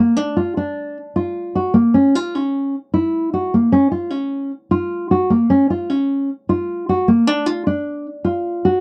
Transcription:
Already playing: A#3
0.16 D4
0.37 F4
0.57 D4
1.16 F4
1.55 F#4
1.74 A#3
1.94 C#4
2.15 F4
2.35 C#4
2.94 E4
3.34 F#4
3.54 A#3
3.72 C#4
3.92 F4
4.10 C#4
4.71 F4
5.11 F#4
5.30 A#3
5.50 C#4
5.70 F4
5.90 C#4
6.49 F4
6.89 F#4
7.08 A#3
7.27 D4
7.46 F4
7.67 D4
8.24 F4
8.65 F#4

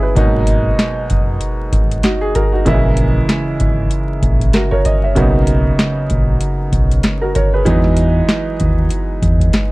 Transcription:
Already playing: C#4 E4 G#4
0.03 G#4 B4
0.15 G#1 B2 F#3 G#3 A#3 D#4, kick, closed hi-hat
0.47 closed hi-hat
0.79 snare, closed hi-hat
1.10 F#1, kick, closed hi-hat
1.41 closed hi-hat
1.72 G#1, kick, closed hi-hat
1.91 closed hi-hat
2.03 D#4 F#4, snare, closed hi-hat
2.21 G#4
2.35 F#4 A#4, kick, closed hi-hat
2.53 D#4 F#4
2.65 A#1 C#3 E3 G#3 A#3 E4, kick, closed hi-hat
2.97 closed hi-hat
3.29 snare, closed hi-hat
3.60 G#1, kick, closed hi-hat
3.91 closed hi-hat
4.22 A#1, kick, closed hi-hat
4.40 kick, closed hi-hat
4.53 F#4 A#4, snare, closed hi-hat
4.71 A#4 C#5, kick
4.85 D#5, kick, closed hi-hat
5.04 C#5 E5
5.15 B1 C#3 F#3 A#3 B3 D#4, kick, closed hi-hat
5.47 closed hi-hat
5.79 snare, closed hi-hat
6.10 A#1, kick, closed hi-hat
6.41 closed hi-hat
6.72 B1, kick, closed hi-hat
6.91 closed hi-hat
7.03 snare, closed hi-hat
7.22 F#4 A#4
7.35 A#4 C#5, kick, closed hi-hat
7.54 G#4 B4
7.65 E2 E3 F#3 G#3 B3 D#4, kick, closed hi-hat
7.84 snare
7.97 closed hi-hat
8.29 snare, closed hi-hat
8.60 D#2, kick, closed hi-hat
8.90 closed hi-hat
9.22 E2, kick, closed hi-hat
9.40 kick, closed hi-hat
9.53 snare, closed hi-hat

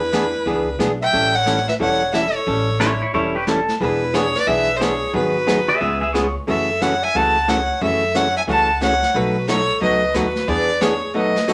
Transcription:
Already playing: E2 E4 B4
0.12 E3 B3 D4 G#4, snare, hi-hat pedal
0.46 C#2 E3 B3 D4 G#4, brush sweep
0.79 B1 E3 B3 D4 G#4, snare, hi-hat pedal
1.02 E5 G5
1.13 A1 E3 G3 C#4 E4 A4, brush sweep
1.35 C#5 F#5
1.46 E3 G3 C#4 E4 A4, snare, hi-hat pedal
1.57 snare
1.68 B4 E5, snare
1.79 E1 E3 G3 C#4 E4 A4 C#5 F#5, brush sweep
2.13 E3 G3 C#4 E4 A4 E5, snare, hi-hat pedal
2.35 A4 C#5
2.46 A1 E3 G3 C#4 E4 A4, brush sweep
2.80 E3 G3 C#4 E4 A4 C#5, snare, hi-hat pedal
3.02 E4 C#5
3.13 E1 E3 G3 C#4 E4 A4 C#5, brush sweep
3.35 G4 B4
3.47 E3 G3 C#4 E4 A4, snare, hi-hat pedal
3.68 snare
3.80 E1 E3 B3 D4 E4 G#4 B4, brush sweep
4.14 E3 B3 D4 G#4 C#5, snare, hi-hat pedal
4.35 B4 D5, snare
4.47 B1 E3 B3 D4 G#4 B4 E5, brush sweep
4.77 E3 B3 D4 G#4 C5
4.81 G#4 C#5, snare, hi-hat pedal
5.13 G#1 D#3 F#3 B3 D#4 F#4 G#4 B4, brush sweep
5.47 D#3 F#3 B3 D#4 G#4, snare, hi-hat pedal
5.68 G#4 E5
5.80 C#2 C#3 G#3 B3 F4 G#4 E5, brush sweep
6.01 G#4 E5
6.13 C#3 G#3 B3 F4 G#4 C#5, snare, hi-hat pedal
6.47 F#2 C#3 E3 A3 C#4 F#4 A4 E5, brush sweep
6.81 C#3 E3 A3 C#4 F#4 C#5 F#5, snare, hi-hat pedal
7.03 E5 G#5
7.15 C#2 C#3 E3 A3 C#4 F#4 F#5 A5, brush sweep
7.48 C#3 E3 A3 C#4 F#4 C#5 F#5, snare, hi-hat pedal
7.81 F#2 C#3 E3 A3 C#4 F#4 A4 E5, brush sweep
8.15 C#3 E3 A3 C#4 F#4 C#5 F#5, snare, hi-hat pedal
8.36 E5 G#5
8.47 C#2 C#3 E3 A3 C#4 F#4 F#5 A5, brush sweep
8.81 C#3 E3 A3 C#4 F#4 C#5 F#5, snare, hi-hat pedal
9.02 snare
9.14 B1 B2 F#3 A3 D#4 F#4 B4, brush sweep
9.48 B2 F#3 A3 D#4 F#4 A4 C#5, snare, hi-hat pedal
9.81 C#2 B2 F#3 A3 D#4 F#4 B4 D#5, brush sweep
10.14 D#2 B2 F#3 A3 D#4 F#4 B4, snare, hi-hat pedal
10.36 snare
10.48 E2 E3 B3 D4 G#4 B4 D5, brush sweep
10.81 E3 B3 D4 G#4 C#5, snare, hi-hat pedal
11.14 B2 F#3 A3 D#4 F#4 B4 D#5, brush sweep
11.36 snare
11.48 B2 F#3 A3 D#4 F#4, snare, hi-hat pedal

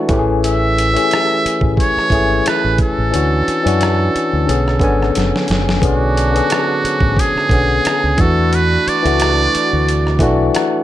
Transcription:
Already playing: E3 G#3 A3 D4 F#4
0.08 A1 E3 A3 C#4, kick, closed hi-hat
0.13 G4
0.19 G#4
0.44 E5, closed hi-hat
0.78 closed hi-hat
0.94 E3 A3 C#4 G4, closed hi-hat
1.04 G#4
1.11 cross-stick, closed hi-hat
1.45 muted fingered electric bass stroke, closed hi-hat
1.61 A1, kick
1.77 C#5, kick, closed hi-hat
1.97 muted fingered electric bass stroke, cross-stick
2.10 G#1 E3 A3 C#4, kick, closed hi-hat
2.15 G#4
2.46 B4, muted fingered electric bass stroke, cross-stick, closed hi-hat
2.64 A1
2.78 A4, kick, closed hi-hat
2.98 A1
3.11 D2 E3 C#4 D4, closed hi-hat
3.16 F#4
3.48 muted fingered electric bass stroke, closed hi-hat
3.64 F#2 E3 C#4 D4, closed hi-hat
3.68 F#4
3.81 cross-stick, closed hi-hat
4.15 muted fingered electric bass stroke, closed hi-hat
4.33 D2
4.46 B1 D3 B3 C#4, closed hi-hat
4.51 G#4
4.68 cross-stick
4.80 G#1 D3 B3 C#4, kick, closed hi-hat
4.84 G#5
5.03 cross-stick
5.15 F#1, snare, closed hi-hat
5.36 snare
5.48 F#1, snare, closed hi-hat
5.69 snare
5.81 B1 G#2 D3 F#3 B3 C#4 D4, kick, closed hi-hat
5.85 F#4 G#4
6.17 closed hi-hat
6.33 D3 B3 C#4 G#4, closed hi-hat
6.50 cross-stick, closed hi-hat
6.84 muted fingered electric bass stroke, closed hi-hat
7.01 A1, kick
7.17 G#4, kick, closed hi-hat
7.36 muted fingered electric bass stroke, cross-stick
7.49 B1 D3 B3 C#4, kick, closed hi-hat
7.54 G#4
7.85 muted fingered electric bass stroke, cross-stick, closed hi-hat
8.04 C#2
8.17 E2 E3 G#3 B3 D4 F#4 A4, kick, closed hi-hat
8.21 A3 F#4
8.53 B4, closed hi-hat
8.87 D5, muted fingered electric bass stroke, closed hi-hat
9.03 C#2 E3 A3 D4, closed hi-hat
9.07 F#4
9.20 cross-stick, closed hi-hat
9.55 muted fingered electric bass stroke, closed hi-hat
9.73 D2
9.89 closed hi-hat
10.07 cross-stick
10.19 B1 E3 A3 D4, kick, closed hi-hat
10.23 F#4
10.55 F#5, cross-stick, closed hi-hat

